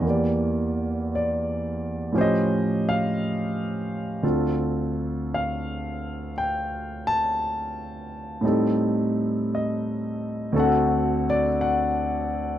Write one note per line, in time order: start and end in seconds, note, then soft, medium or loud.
0.00 2.11 E2 medium
0.00 2.12 E3 soft
0.05 2.14 A#3 soft
0.05 2.14 G4 soft
0.10 1.14 D5 medium
1.15 2.13 D5 medium
2.12 4.23 A2 medium
2.12 4.24 F3 medium
2.12 4.24 C#4 medium
2.12 4.24 G4 medium
2.18 4.25 C5 medium
2.18 2.85 D#5 medium
2.89 3.20 F5 medium
4.23 8.43 D2 soft
4.23 8.43 D3 soft
4.23 8.43 C4 soft
4.23 8.43 F4 soft
4.23 8.43 A4 medium
5.34 6.32 F5 medium
6.38 7.04 G5 medium
7.07 7.39 A5 loud
8.41 10.52 A2 medium
8.41 10.53 G3 medium
8.41 10.53 C4 medium
8.41 10.54 D#4 medium
8.46 10.55 A4 medium
9.55 10.52 D#5 medium
10.52 12.59 D2 medium
10.52 12.59 D3 medium
10.52 12.59 C4 medium
10.52 12.59 F#4 medium
10.52 12.59 A4 medium
10.60 11.25 F#5 medium
11.30 11.49 D5 medium
11.61 12.59 F#5 medium